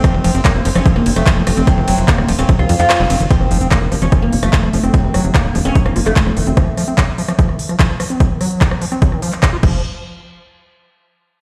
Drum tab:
CC |----------------|----------------|----------------|----------------|
RD |--x---x---x---x-|--x---x---x---x-|----------------|----------------|
HH |x-oxx-oxx-oxx-ox|x-oxx-oxx-oxx-ox|x-oxx-oxx-oxx-ox|x-oxx-oxx-oxx-ox|
CP |----x-------x---|----x------xx---|----x-------x---|----x------xx---|
SD |r-r-r--r-r-r--r-|r-r--r-r-r--r-r-|-r--r-r-r--r-r-r|--r-r----r-r-r--|
BD |o---o---o---o---|o---o---o-------|o---o---o---o---|o---o---o---o---|

CC |----------------|--------------x-|----------------|
RD |----------------|----------------|----------------|
HH |x-oxx-oxx-oxx-ox|x-oxx-oxx-oxx---|----------------|
CP |----x-------x---|----x------xx---|----------------|
SD |r-r-r--r-r-r--r-|r-r--r-r-r--r---|----------------|
BD |o---o---o---o---|o---o---o---o-o-|----------------|